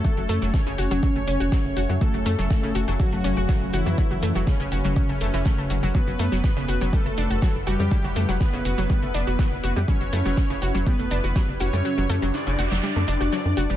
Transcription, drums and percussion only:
0.05 kick, closed hi-hat, shaker
0.29 closed hi-hat, open hi-hat, shaker
0.42 snare, shaker
0.54 kick, snare, closed hi-hat, shaker
0.78 closed hi-hat, open hi-hat, shaker
0.91 shaker
1.03 kick, closed hi-hat, shaker
1.15 closed hi-hat
1.27 closed hi-hat, open hi-hat, shaker
1.40 shaker
1.52 kick, snare, closed hi-hat, shaker
1.76 closed hi-hat, open hi-hat, shaker
1.90 shaker
2.01 kick, closed hi-hat, shaker
2.25 snare, closed hi-hat, open hi-hat, shaker
2.38 snare, shaker
2.50 kick, snare, closed hi-hat, shaker
2.75 closed hi-hat, open hi-hat, shaker
2.88 closed hi-hat, shaker
3.00 kick, open hi-hat, shaker
3.24 closed hi-hat, open hi-hat, shaker
3.37 shaker
3.49 kick, snare, closed hi-hat, shaker
3.73 closed hi-hat, open hi-hat, shaker
3.86 shaker
3.98 kick, closed hi-hat, shaker
4.23 closed hi-hat, open hi-hat, shaker
4.35 snare, shaker
4.47 kick, snare, closed hi-hat, shaker
4.72 closed hi-hat, open hi-hat, shaker
4.85 shaker
4.96 kick, closed hi-hat, shaker
5.09 closed hi-hat
5.20 closed hi-hat, open hi-hat, shaker
5.34 shaker
5.45 kick, snare, closed hi-hat, shaker
5.70 closed hi-hat, open hi-hat, shaker
5.83 shaker
5.95 kick, closed hi-hat, shaker
6.19 snare, closed hi-hat, open hi-hat, shaker
6.32 snare, shaker
6.44 kick, snare, closed hi-hat, shaker
6.68 closed hi-hat, open hi-hat, shaker
6.81 closed hi-hat, shaker
6.93 kick, open hi-hat, shaker
7.18 closed hi-hat, open hi-hat, shaker
7.30 shaker
7.42 kick, snare, closed hi-hat, shaker
7.67 closed hi-hat, open hi-hat, shaker
7.80 shaker
7.91 kick, closed hi-hat, shaker
8.16 closed hi-hat, open hi-hat, shaker
8.29 snare, shaker
8.40 kick, snare, closed hi-hat, shaker
8.65 closed hi-hat, open hi-hat, shaker
8.78 shaker
8.90 kick, closed hi-hat, shaker
9.02 closed hi-hat
9.14 closed hi-hat, open hi-hat, shaker
9.27 shaker
9.39 kick, snare, closed hi-hat, shaker
9.63 closed hi-hat, open hi-hat, shaker
9.76 shaker
9.88 kick, closed hi-hat, shaker
10.13 snare, closed hi-hat, open hi-hat, shaker
10.25 snare, shaker
10.37 kick, snare, closed hi-hat, shaker
10.62 closed hi-hat, open hi-hat, shaker
10.75 closed hi-hat, shaker
10.87 kick, open hi-hat, shaker
11.11 closed hi-hat, open hi-hat, shaker
11.24 shaker
11.36 kick, snare, closed hi-hat, shaker
11.60 closed hi-hat, open hi-hat, shaker
11.73 shaker
11.85 closed hi-hat, shaker
12.10 open hi-hat, shaker
12.22 shaker
12.34 snare, closed hi-hat, shaker
12.59 closed hi-hat, open hi-hat, shaker
12.72 shaker
12.83 closed hi-hat, shaker
12.97 closed hi-hat
13.08 snare, closed hi-hat, open hi-hat, shaker
13.21 snare, shaker
13.32 snare, closed hi-hat, shaker
13.57 closed hi-hat, open hi-hat, shaker
13.70 shaker

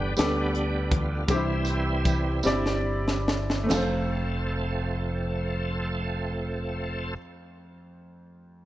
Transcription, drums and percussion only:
0.17 snare, closed hi-hat, tambourine
0.55 closed hi-hat
0.92 kick, closed hi-hat
1.28 kick, closed hi-hat, tambourine
1.65 closed hi-hat, tambourine
2.05 kick, closed hi-hat, tambourine
2.43 snare, tambourine
2.66 snare
3.08 snare
3.28 snare
3.50 snare
3.71 snare, china, tambourine

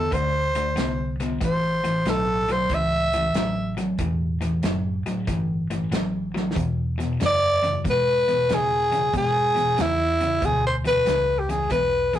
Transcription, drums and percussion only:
0.12 kick, closed hi-hat
0.55 snare, closed hi-hat
0.77 snare, closed hi-hat
1.20 snare, closed hi-hat
1.41 kick, snare, closed hi-hat
1.85 snare, closed hi-hat
2.06 snare, closed hi-hat
2.49 snare, closed hi-hat
2.69 kick, snare, closed hi-hat
3.13 snare, closed hi-hat
3.34 snare, closed hi-hat
3.78 snare, closed hi-hat
3.99 kick, closed hi-hat
4.42 snare, closed hi-hat
4.63 snare, closed hi-hat
5.06 snare, closed hi-hat
5.27 kick, snare, closed hi-hat
5.71 snare, closed hi-hat
5.92 snare, closed hi-hat
6.36 snare
6.51 snare
6.56 kick, closed hi-hat
7.00 snare, closed hi-hat
7.20 snare, closed hi-hat
7.64 snare, closed hi-hat
7.85 kick, closed hi-hat
8.28 snare, closed hi-hat
8.49 snare, closed hi-hat
8.92 snare, closed hi-hat
9.13 kick, closed hi-hat
9.57 snare, closed hi-hat
9.78 snare, closed hi-hat
10.21 snare, closed hi-hat
10.42 kick, closed hi-hat
10.85 snare, closed hi-hat
11.06 snare, closed hi-hat
11.50 snare, closed hi-hat
11.70 kick, closed hi-hat
12.14 snare, closed hi-hat

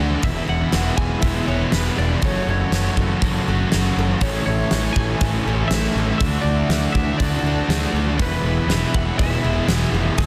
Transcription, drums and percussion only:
0.23 kick, open hi-hat
0.72 snare, open hi-hat
0.98 kick
1.22 kick, open hi-hat
1.72 snare, open hi-hat
2.22 kick, open hi-hat
2.72 snare, open hi-hat
2.97 kick
3.22 kick, open hi-hat
3.72 snare, open hi-hat
4.21 kick, open hi-hat
4.71 snare, open hi-hat
4.96 kick
5.21 kick, open hi-hat
5.71 snare, open hi-hat
6.20 kick, open hi-hat
6.70 snare, open hi-hat
6.95 kick
7.20 kick, open hi-hat
7.70 snare, open hi-hat
8.20 kick, open hi-hat
8.70 snare, open hi-hat
8.94 kick
9.19 kick, open hi-hat
9.69 snare, open hi-hat
10.18 kick, open hi-hat

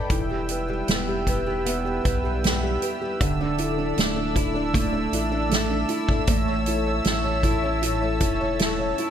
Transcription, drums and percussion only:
0.10 kick, closed hi-hat
0.49 closed hi-hat
0.88 snare, closed hi-hat
1.27 kick, closed hi-hat
1.66 closed hi-hat
2.05 kick, closed hi-hat
2.44 snare, closed hi-hat
2.82 closed hi-hat
3.21 kick, closed hi-hat
3.58 closed hi-hat
3.98 snare, closed hi-hat
4.36 kick, closed hi-hat
4.74 kick, closed hi-hat
5.13 closed hi-hat
5.51 snare, closed hi-hat
5.89 closed hi-hat
6.09 kick
6.27 kick, closed hi-hat
6.66 closed hi-hat
7.04 snare, closed hi-hat
7.43 kick, closed hi-hat
7.83 closed hi-hat
8.20 kick, closed hi-hat
8.59 snare, closed hi-hat
8.98 closed hi-hat

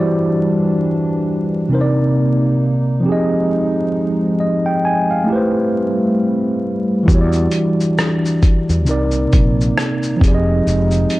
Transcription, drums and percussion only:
7.08 kick, shaker
7.33 shaker
7.52 closed hi-hat, shaker
7.81 shaker
7.98 cross-stick, shaker
8.26 shaker
8.43 kick, closed hi-hat, shaker
8.70 shaker
8.86 shaker
9.12 shaker
9.33 kick, closed hi-hat, shaker
9.61 shaker
9.78 cross-stick, shaker
10.03 shaker
10.21 kick, closed hi-hat, shaker
10.68 shaker
10.91 shaker
11.10 closed hi-hat, shaker

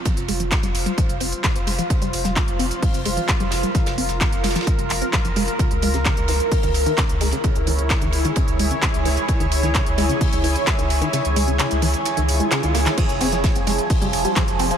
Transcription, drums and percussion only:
0.05 kick, closed hi-hat, ride
0.17 closed hi-hat
0.28 open hi-hat, ride
0.40 closed hi-hat
0.51 kick, snare, clap, closed hi-hat, ride
0.63 closed hi-hat, ride
0.75 open hi-hat, ride
0.86 closed hi-hat, ride
0.98 kick, closed hi-hat, ride
1.09 closed hi-hat
1.20 open hi-hat, ride
1.32 closed hi-hat
1.44 kick, snare, clap, closed hi-hat, ride
1.56 closed hi-hat
1.67 open hi-hat, ride
1.79 closed hi-hat
1.90 kick, closed hi-hat, ride
2.02 closed hi-hat
2.13 open hi-hat, ride
2.24 snare, closed hi-hat
2.36 kick, snare, clap, closed hi-hat, ride
2.48 closed hi-hat
2.59 open hi-hat, ride
2.71 closed hi-hat
2.82 kick, closed hi-hat, open hi-hat
2.94 closed hi-hat, ride
3.05 open hi-hat, ride
3.17 closed hi-hat
3.28 kick, snare, clap, closed hi-hat, ride
3.40 closed hi-hat
3.51 snare, open hi-hat, ride
3.63 closed hi-hat
3.74 kick, snare, closed hi-hat, ride
3.86 snare, closed hi-hat, ride
3.98 open hi-hat
4.09 snare, closed hi-hat, ride
4.21 kick, snare, clap, closed hi-hat, ride
4.32 closed hi-hat, ride
4.44 snare, open hi-hat, ride
4.50 snare, ride
4.55 snare, closed hi-hat, ride
4.61 snare, ride
4.67 kick, closed hi-hat, ride
4.79 closed hi-hat
4.90 clap, open hi-hat, ride
5.02 closed hi-hat
5.13 kick, snare, clap, closed hi-hat, ride
5.25 closed hi-hat
5.36 open hi-hat, ride
5.48 closed hi-hat
5.59 kick, closed hi-hat, ride
5.71 closed hi-hat
5.82 open hi-hat, ride
5.93 snare, closed hi-hat
6.05 kick, snare, clap, closed hi-hat, ride
6.17 closed hi-hat
6.28 snare, open hi-hat, ride
6.40 closed hi-hat
6.52 kick, closed hi-hat, open hi-hat
6.63 closed hi-hat, ride
6.74 open hi-hat, ride
6.86 closed hi-hat
6.98 kick, snare, clap, closed hi-hat, ride
7.09 closed hi-hat
7.21 open hi-hat, ride
7.31 closed hi-hat, ride
7.44 kick, closed hi-hat, ride
7.55 closed hi-hat
7.67 open hi-hat, ride
7.79 closed hi-hat
7.90 kick, snare, clap, closed hi-hat, ride
8.01 closed hi-hat, ride
8.12 open hi-hat, ride
8.25 closed hi-hat, ride
8.36 kick, closed hi-hat, ride
8.48 closed hi-hat
8.59 open hi-hat, ride
8.71 closed hi-hat
8.82 kick, snare, clap, closed hi-hat, ride
8.94 closed hi-hat
9.05 open hi-hat, ride
9.17 closed hi-hat
9.28 kick, closed hi-hat, ride
9.40 closed hi-hat
9.51 open hi-hat, ride
9.63 snare, closed hi-hat
9.74 kick, snare, clap, closed hi-hat, ride
9.86 closed hi-hat
9.98 snare, open hi-hat, ride
10.09 closed hi-hat
10.21 kick, closed hi-hat, open hi-hat
10.32 closed hi-hat, ride
10.44 open hi-hat, ride
10.56 closed hi-hat
10.67 kick, snare, clap, closed hi-hat, ride
10.79 closed hi-hat
10.90 open hi-hat, ride
11.01 closed hi-hat, ride
11.13 closed hi-hat, ride
11.25 closed hi-hat
11.36 open hi-hat, ride
11.48 closed hi-hat
11.59 snare, clap, closed hi-hat, ride
11.71 closed hi-hat, ride
11.82 open hi-hat, ride
11.93 closed hi-hat, ride
12.05 closed hi-hat, ride
12.17 closed hi-hat
12.29 open hi-hat, ride
12.40 closed hi-hat
12.51 snare, clap, closed hi-hat, ride
12.63 closed hi-hat
12.74 snare, open hi-hat, ride
12.86 snare, clap, closed hi-hat, ride
12.97 kick, closed hi-hat, ride, crash
13.09 closed hi-hat
13.21 open hi-hat, ride
13.32 snare, closed hi-hat
13.44 kick, snare, closed hi-hat, ride
13.55 closed hi-hat
13.67 snare, open hi-hat, ride
13.79 closed hi-hat
13.90 kick, closed hi-hat, open hi-hat, ride
14.02 closed hi-hat, ride
14.13 open hi-hat, ride
14.25 closed hi-hat
14.36 kick, snare, clap, closed hi-hat, ride
14.48 closed hi-hat
14.59 open hi-hat, ride
14.70 closed hi-hat, ride

